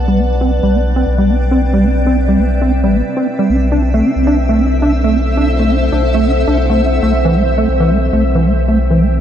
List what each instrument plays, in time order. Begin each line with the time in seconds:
Already playing: sub bass B1, ambient pad C4 B4 D5 A5
0.08 acid bass G3
0.19 acid bass C4, ambient pad G5
0.41 acid bass C4
0.63 sub bass B1, acid bass G3
0.74 acid bass C4
0.96 acid bass C4
1.07 sub bass B1
1.18 acid bass G3
1.24 ambient pad E5
1.29 acid bass C4
1.51 acid bass C4
1.73 acid bass G3
1.84 acid bass C4
2.06 acid bass C4
2.28 acid bass G3
2.39 sub bass B1, acid bass C4
2.62 acid bass C4
2.84 sub bass A1, acid bass G3
2.95 acid bass C4
3.17 acid bass C4
3.39 acid bass G3
3.50 sub bass B1, acid bass D4, synth texture E5
3.72 acid bass D4
3.77 ambient pad A4
3.94 acid bass A3
4.05 acid bass D4
4.16 sub bass B1, ambient pad C5
4.27 acid bass D4
4.49 acid bass A3
4.60 acid bass D4
4.82 acid bass D4
4.98 ambient pad F#5
5.04 acid bass A3
5.15 acid bass D4
5.37 acid bass D4
5.59 acid bass A3
5.70 acid bass D4
5.92 sub bass B1, acid bass D4
6.14 acid bass A3
6.25 acid bass D4
6.48 sub bass B1, acid bass D4
6.70 acid bass A3
6.81 acid bass D4
7.03 sub bass B1, acid bass A3
7.25 acid bass E3
7.36 acid bass A3
7.58 acid bass A3
7.69 sub bass B1
7.80 acid bass E3
7.91 acid bass A3
8.13 sub bass B1, acid bass A3
8.35 acid bass E3
8.46 acid bass A3
8.68 acid bass A3
8.90 acid bass E3
9.01 acid bass A3